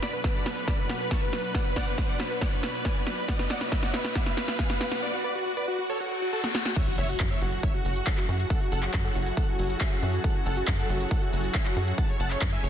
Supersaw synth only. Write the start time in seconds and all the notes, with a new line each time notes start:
0.02 D5 B5
0.13 B4
0.24 B4
0.35 D5 B5
0.46 B4
0.57 B4
0.68 D5 B5
0.79 B4
0.89 B4
1.00 B4
1.11 A5 C#6
1.22 B4
1.33 B4
1.44 B4
1.55 D5 F#5
1.66 B4
1.76 D5 F#5
1.87 B4
1.98 B4
2.09 D5 F#5
2.20 B4
2.31 B4
2.42 D5 F#5
2.52 B4
2.63 B4
2.74 B4
2.85 B4 G#5
2.96 B4
3.07 B4
3.18 B4
3.29 D5 F#5
3.40 B4
3.50 D5 F#5
3.61 B4
3.72 B4
3.83 D5 F#5
3.94 B4
4.05 B4
4.15 D5 F#5
4.27 B4
4.37 B4
4.48 B4
4.59 B4 G#5
4.70 B4
4.81 B4
4.92 B4
5.02 B4 D5
5.13 F#4
5.24 B4 D5
5.35 F#4
5.46 F#4
5.57 B4 D5
5.68 F#4
5.79 F#4
5.89 A4 C#5
6.00 F#4
6.11 F#4
6.22 F#4
6.33 F#4 A4
6.44 F#4
6.54 F#4
6.65 F#4
6.76 C#5 E5
6.87 F#4
6.98 C#5 E5
7.09 F#4
7.20 F#4
7.31 C#5 E5
7.41 F#4
7.52 F#4
7.63 C#5 E5
7.74 F#4
7.85 F#4
7.96 F#4
8.07 A4 F#5
8.18 F#4
8.29 F#4
8.39 F#4
8.50 A4 F#5
8.61 F#4
8.72 A4 F#5
8.83 F#4
8.94 F#4
9.05 A4 F#5
9.15 F#4
9.26 F#4
9.37 A4 F#5
9.48 F#4
9.59 F#4
9.70 F#4
9.81 E5 G#5
9.92 F#4
10.03 F#4
10.13 F#4
10.24 A4 F#5
10.35 F#4
10.46 A4 F#5
10.57 F#4
10.68 F#4
10.78 A4 F#5
10.89 F#4
11.00 F#4
11.11 A4 F#5
11.22 F#4
11.33 F#4
11.44 F#4
11.55 E5 G#5
11.66 F#4
11.76 F#4
11.87 F#4
11.98 F#5 A5
12.09 C#5
12.20 F#5 A5
12.31 C#5
12.42 C#5
12.52 E5 G#5
12.63 C#5